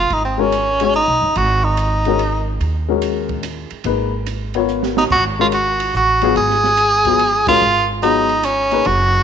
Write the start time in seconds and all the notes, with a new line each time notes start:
Already playing: F4
0.10 G#1 D#4, ride
0.25 C4
0.38 G#3 C#4 F#4 A#4
0.52 hi-hat pedal, ride
0.80 G#3 C#4 F#4 C#5, ride
0.93 D#4, hi-hat pedal
1.07 B1
1.22 F#1
1.35 G#1 F#4, ride
1.64 D#4
1.77 hi-hat pedal, ride
2.05 G#3 C#4 F#4 A#4, ride
2.19 ride
2.60 D#2, ride
2.88 G#3 C#4 F#4 A#4
3.02 hi-hat pedal, ride
3.29 kick, ride
3.43 hi-hat pedal, ride
3.70 muted upright bass stroke, ride
3.84 G#1 A#3 D#4 G#4 B4, ride
4.26 hi-hat pedal, ride
4.54 B3 F4 A#4 C#5, ride
4.68 hi-hat pedal
4.83 snare
4.97 D#4, snare
5.10 G#1 F#4, kick, crash
5.39 G#3 C#4 F4 F#4 A#4
5.52 F#4, hi-hat pedal, ride
5.80 ride
5.94 A1 F#4, hi-hat pedal
6.21 F#3 B3 F4 G#4, ride
6.35 G#1 G#4, ride
6.50 snare
6.64 snare
6.77 hi-hat pedal, ride
7.05 F#3 B3 F4 G#4, kick, ride
7.19 ride
7.47 G#3 C#4 F4 F#4 A#4, kick, ride
7.61 G#1
8.03 F#3 B3 D#4 F4 G#4, hi-hat pedal, ride
8.29 ride
8.43 C#4, hi-hat pedal, ride
8.71 A#3 D#4 G#4 B4, ride
8.85 F#1 F#4, ride